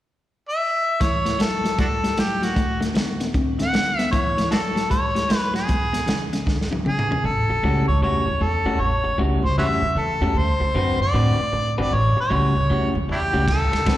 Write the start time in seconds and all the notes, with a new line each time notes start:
0.49 E5
1.00 A2 E3 C#5, kick, snare, closed hi-hat
1.25 A2 E3, snare, closed hi-hat
1.39 A2 F#3 A4, snare, closed hi-hat
1.64 A2 F#3, snare, closed hi-hat
1.78 A2 G3 D4 F#4 A4, kick, closed hi-hat
2.04 A2 G3, snare, closed hi-hat
2.17 A2 F#3 G4, snare, closed hi-hat
2.42 A2 F#3 F#4, snare, closed hi-hat
2.55 D3 A3, kick, closed hi-hat
2.80 D3 A3, snare, closed hi-hat
2.94 D3 B3, snare, closed hi-hat
3.20 D3 B3, snare, closed hi-hat
3.34 D3 C4, kick, closed hi-hat
3.59 D3 C4 F#5, snare, closed hi-hat
3.73 D3 B3, snare, closed hi-hat
3.99 D3 B3, snare, closed hi-hat
4.12 A2 E3 C#5, kick, closed hi-hat
4.38 A2 E3, snare, closed hi-hat
4.51 A2 F#3 D4 F#4 A4, snare, closed hi-hat
4.76 A2 F#3, snare, closed hi-hat
4.90 A2 G3 C#5, kick, closed hi-hat
5.15 A2 G3, snare, closed hi-hat
5.29 A2 F#3, snare, closed hi-hat
5.37 B4
5.54 A2 F#3 G#4, snare, closed hi-hat
5.68 E2 B2, kick, closed hi-hat
5.93 E2 B2, snare, closed hi-hat
6.06 E2 C#3, snare, closed hi-hat
6.33 E2 C#3, snare, closed hi-hat
6.46 E2 D3, kick, snare
6.61 snare
6.71 E2 D3, high tom
6.85 E2 C#3 G#4, mid tom
6.99 mid tom
7.11 E2 C#3, floor tom
7.24 A1 A4, muted clean electric guitar stroke
7.49 A1, muted clean electric guitar stroke
7.63 C#2 A2 G3 C#4 F#4
7.88 C#2 C#5, muted clean electric guitar stroke
8.01 E2 A2 G3 C#4 F#4 C#5
8.27 E2, muted clean electric guitar stroke
8.41 E2 A4, muted clean electric guitar stroke
8.65 E2 A2 G3 C#4 F#4
8.78 A1 C#5, muted clean electric guitar stroke
9.04 A1, muted clean electric guitar stroke
9.18 C#2 A2 G3 C#4 F#4
9.43 C#2 C5, muted clean electric guitar stroke
9.57 E2 A2 G3 C#4 F#4 B4 C#5 E5
9.82 E2, muted clean electric guitar stroke
9.95 E2 A4, muted clean electric guitar stroke
10.21 E2 A2 G3 C#4 F#4
10.34 D2, muted clean electric guitar stroke
10.38 C5
10.60 D2, muted clean electric guitar stroke
10.75 F#2 D3 C4 F#4 B4
11.00 F#2 D5, muted clean electric guitar stroke
11.13 A2 D3 C4 F#4 B4
11.39 A2, muted clean electric guitar stroke
11.53 A2, muted clean electric guitar stroke
11.78 G1 D3 C4 F#4 B4 D5
11.92 A1 C#5, muted clean electric guitar stroke
12.17 A1, muted clean electric guitar stroke
12.21 C#5
12.30 C#2 A2 G3 C#4 F#4
12.55 C#2, muted clean electric guitar stroke
12.70 E2 A2 G3 C#4 F#4
12.95 E2, muted clean electric guitar stroke
13.08 E2 D4 E4 G4, muted clean electric guitar stroke
13.33 C#2 A2 G3 C#4 F#4
13.48 D2 A4, muted clean electric guitar stroke, kick, snare, ride
13.72 D2, muted clean electric guitar stroke, snare, ride
13.86 F#2 D3 C4 F#4 B4, kick, snare, ride